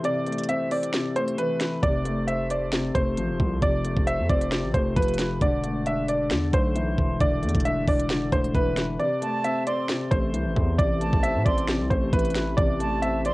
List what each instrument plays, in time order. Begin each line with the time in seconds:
Already playing: felt piano C3 E3 A3 C4
0.03 felt piano C3, grand piano D5, closed hi-hat
0.26 felt piano A3, closed hi-hat
0.32 closed hi-hat
0.38 closed hi-hat
0.44 closed hi-hat
0.49 felt piano C4, grand piano E5, closed hi-hat
0.71 felt piano C4, grand piano D5, closed hi-hat, open hi-hat
0.83 closed hi-hat
0.93 felt piano C3, finger snap, snare, closed hi-hat
1.16 felt piano A3, grand piano C5, closed hi-hat
1.28 closed hi-hat
1.38 felt piano E3, grand piano B4, closed hi-hat
1.60 finger snap, snare, closed hi-hat
1.83 808-style bass F1, felt piano C3, grand piano D5, kick, closed hi-hat
2.05 felt piano A3, closed hi-hat
2.28 felt piano C5, grand piano E5, closed hi-hat
2.50 felt piano C5, grand piano D5, closed hi-hat
2.72 felt piano C3, finger snap, snare, closed hi-hat
2.95 808-style bass F1, felt piano A3, grand piano C5, kick, closed hi-hat
3.17 808-style bass A1, felt piano F3, closed hi-hat
3.29 808-style bass F1
3.40 808-style bass C2, kick
3.62 808-style bass F1, felt piano C3, grand piano D5, kick, closed hi-hat
3.85 felt piano A3, closed hi-hat
3.96 808-style bass F1, kick
4.06 felt piano C5, grand piano E5, closed hi-hat
4.19 808-style bass F2
4.29 808-style bass F1, felt piano C4, grand piano D5, kick, closed hi-hat
4.41 closed hi-hat
4.51 felt piano C3, finger snap, snare, closed hi-hat
4.64 808-style bass A1
4.74 808-style bass F1, felt piano A3, grand piano C5, kick, closed hi-hat
4.96 808-style bass F1, felt piano F3, grand piano B4, kick, closed hi-hat
5.02 closed hi-hat
5.08 closed hi-hat
5.14 closed hi-hat
5.18 finger snap, snare, closed hi-hat
5.41 808-style bass E1, felt piano D3, grand piano D5, kick, closed hi-hat
5.64 felt piano A3, closed hi-hat
5.86 felt piano D4, grand piano E5, closed hi-hat
6.08 felt piano D4, grand piano D5, closed hi-hat
6.30 808-style bass E2, felt piano D3, finger snap, snare, closed hi-hat
6.53 808-style bass B1, felt piano A3, grand piano C5, kick, closed hi-hat
6.76 felt piano E3, closed hi-hat
6.98 808-style bass E1, kick
7.20 808-style bass E1, felt piano D3, grand piano D5, kick, closed hi-hat
7.43 808-style bass E2, felt piano A3, closed hi-hat
7.49 closed hi-hat
7.55 808-style bass E1, kick, closed hi-hat
7.60 closed hi-hat
7.65 felt piano D4, grand piano E5, closed hi-hat
7.87 808-style bass E1, felt piano D4, grand piano D5, kick, closed hi-hat, open hi-hat
8.00 closed hi-hat
8.09 felt piano D3, finger snap, snare, closed hi-hat
8.32 808-style bass E1, felt piano A3, grand piano C5, kick, closed hi-hat
8.44 closed hi-hat
8.55 808-style bass E1, felt piano E3, grand piano B4, kick, closed hi-hat
8.76 finger snap, snare, closed hi-hat
8.99 felt piano C3, grand piano D5, closed hi-hat
9.22 felt piano A3, flute A5, closed hi-hat
9.44 felt piano C4, grand piano E5, closed hi-hat
9.67 felt piano C4, grand piano D5, flute C6, closed hi-hat
9.88 felt piano C3, finger snap, snare, closed hi-hat
10.11 808-style bass A1, felt piano A3, grand piano C5, kick, closed hi-hat
10.34 808-style bass C2, felt piano E3, closed hi-hat
10.46 808-style bass A1
10.56 808-style bass E2, kick
10.78 808-style bass A1, felt piano C3, grand piano D5, kick, closed hi-hat
11.01 felt piano A3, flute A5, closed hi-hat
11.13 808-style bass A1, kick
11.23 felt piano C4, grand piano E5, closed hi-hat
11.35 808-style bass A2
11.45 808-style bass A1, felt piano C4, grand piano D5, flute C6, kick, closed hi-hat
11.58 closed hi-hat
11.68 felt piano C3, finger snap, snare, closed hi-hat
11.80 808-style bass C2
11.90 808-style bass A1, felt piano A3, grand piano C5, kick, closed hi-hat
12.13 808-style bass A1, felt piano E3, grand piano B4, kick, closed hi-hat
12.19 closed hi-hat
12.25 closed hi-hat
12.30 closed hi-hat
12.35 finger snap, snare, closed hi-hat
12.57 808-style bass A1, felt piano C3, grand piano D5, kick, closed hi-hat
12.80 felt piano A3, flute A5, closed hi-hat
13.02 felt piano C4, grand piano E5, closed hi-hat
13.25 felt piano C4, grand piano D5, flute C6, closed hi-hat